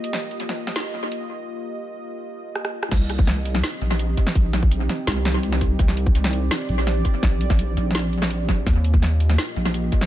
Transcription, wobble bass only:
X:1
M:4/4
L:1/8
Q:1/4=167
K:Cm
V:1 name="Wobble bass" clef=bass
z8 | z8 | C,,4 z B,,,2 z | B,,,3 z C,,4 |
C,,4 z B,,,2 z | B,,,3 B,,,4- B,,, | E,,4 z B,,,2 z |]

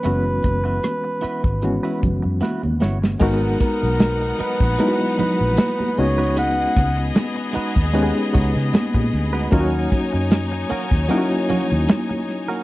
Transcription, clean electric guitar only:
X:1
M:4/4
L:1/16
Q:"Swing 16ths" 1/4=76
K:G#m
V:1 name="Clean electric guitar"
[B,EFB] z2 [B,EFB] z2 [B,EFB] z2 [B,EFB] z2 [B,EFB] z [B,EFc] z | [F,B,DA]2 z4 [F,B,DA] z [F,B,DA] z [F,B,DB] z4 [G,DFB] | [G,DFB]2 z4 [G,DFB] z [G,DFB] z [G,DFc] z4 [G,DFB] | [A,CFA]2 z4 [A,CFA] z [A,CFA] z [A,CFc] z4 [A,CFA] |]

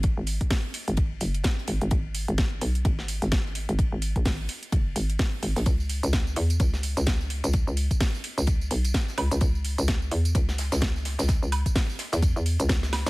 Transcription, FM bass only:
X:1
M:4/4
L:1/16
Q:"Swing 16ths" 1/4=128
K:C#dor
V:1 name="FM bass" clef=bass
G,,, G,,,2 z4 G,,,3 F,,,2 z2 G,,, G,,, | G,,,3 G,,,3 B,,,2 G,,,3 G,,,4 G,,,- | G,,, G,,,2 A,,, G,,,2 z2 F,,,2 G,,,2 z2 G,,, A,,, | C,,3 C,,3 E,,2 C,,3 C,,4 C,,- |
C,, C,,2 z4 C,,3 B,,,2 z2 C,, C,, | C,,3 C,,3 E,,2 C,,3 C,,4 C,,- | C,, C,,2 z4 E,,2 E,,2 C,, C,,3 C,, |]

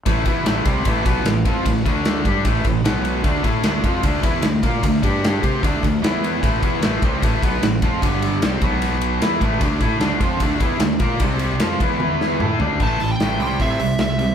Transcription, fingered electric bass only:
X:1
M:4/4
L:1/8
Q:1/4=151
K:Am
V:1 name="Fingered electric bass" clef=bass
A,,, E,, A,,, C,, A,,, B,,, A,,, F,, | A,,, D,,2 G,, A,,, A,,, B,,,2 | D,, A,, D,, F,, D,, E,, D,, _B,, | D,, G,,2 C, D,, D,, E,,2 |
A,,, E,, A,,, C,, A,,, B,,, A,,, F,, | G,,,2 C,, B,,,3 E,, A,,, | D,, A,, D,, F,, D,, E,, D,, _B,, | C,,2 F,, E,,3 A,, D,, |
A,,, A,,, A,,, C,, A,, C,, C,,2 |]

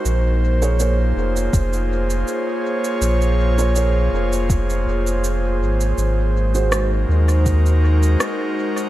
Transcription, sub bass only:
X:1
M:4/4
L:1/8
Q:"Swing 16ths" 1/4=81
K:Bbm
V:1 name="Sub bass" clef=bass
B,,,3 F,,, F,,,2 z2 | B,,,3 F,,,2 F,,,2 A,,, | A,,,3 E,,3 z2 |]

